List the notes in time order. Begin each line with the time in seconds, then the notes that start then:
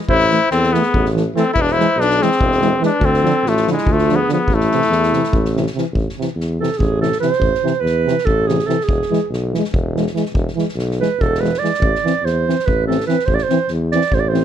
0.08 A1 E4 C5, kick
0.19 snare
0.29 E3 A3, snare
0.51 E2 C4 A4, snare
0.63 snare
0.73 E3 A3 B3 G#4, snare
0.82 snare
0.94 A1, kick
1.05 snare
1.14 E3 A3, snare
1.35 E3 A3 C4 A4, snare
1.54 E1 E4 B4, kick
1.62 D4 B4
1.67 snare
1.72 E4 C5
1.78 E3 G#3, snare
1.96 B1, snare
2.01 D4 B4
2.10 snare
2.21 E3 G#3 C4 G#4, snare
2.31 snare
2.40 E1, kick
2.52 snare
2.61 E3 G#3, snare
2.80 E3 G#3 B4, snare
2.85 D4
3.00 D2 A4, kick
3.05 C4
3.14 snare
3.23 D3 F3, snare
3.43 A1 F4, snare
3.49 A3
3.57 snare
3.66 D3 F3, snare
3.70 G#3 E4
3.77 snare
3.86 D2, kick
3.90 A3 F4
3.98 snare
4.09 D3 F3, snare
4.15 B3 G#4
4.28 D3 F3, snare
4.33 B3 G#4
4.47 A1, kick
4.53 A3 E4
4.60 snare
4.71 C3 E3, snare
4.82 snare
4.89 E2, snare
5.03 snare
5.12 C3 E3, snare
5.23 snare
5.33 A1, kick
5.45 snare
5.55 C3 E3, snare
5.66 snare
5.75 C3 E3, snare
5.92 A1, kick
6.09 snare
6.18 C3 E3, snare
6.35 E2
6.40 snare
6.60 C3 E3 A4, snare
6.72 snare
6.78 A1 G#4, kick
7.01 C3 E3 A4, snare
7.12 snare
7.20 C3 E3 C5, snare
7.32 snare
7.39 A1, kick
7.54 snare
7.64 C3 E3, snare
7.80 E2 B4
7.86 snare
8.05 C3 E3, snare
8.18 snare
8.26 A1 A4, kick
8.47 C3 E3 G#4, snare
8.59 snare
8.67 C3 E3 A4, snare
8.80 G#4, snare
8.88 E1, kick
9.02 snare
9.10 E3 G#3, snare
9.30 B1, snare
9.53 E3 G#3, snare
9.64 snare
9.72 E1, kick
9.95 E3 G#3, snare
10.06 snare
10.14 E3 G#3, snare
10.25 snare
10.34 E1, kick
10.47 snare
10.55 E3 G#3, snare
10.68 snare
10.76 B1, snare
10.91 snare
11.00 E3 G#3 B4, snare
11.19 E1 A4, kick
11.34 snare
11.40 E3 G#3 B4, snare
11.54 snare
11.59 G#3 D5
11.63 E3, snare
11.74 snare
11.80 A1, kick
11.95 snare
12.04 E3 C4, snare
12.23 E2 C5, snare
12.47 E3 C4, snare
12.59 snare
12.66 A1 B4, kick
12.87 E3 C4 A4, snare
13.00 snare
13.07 E3 C4 B4, snare
13.19 snare
13.26 A1 C5, kick
13.35 D5, snare
13.43 C5
13.49 E3 C4, snare
13.68 E2, snare
13.91 E3 C4 D5, snare
14.01 snare
14.12 A1 C5, kick
14.20 D5
14.28 C5
14.33 E3 C4, snare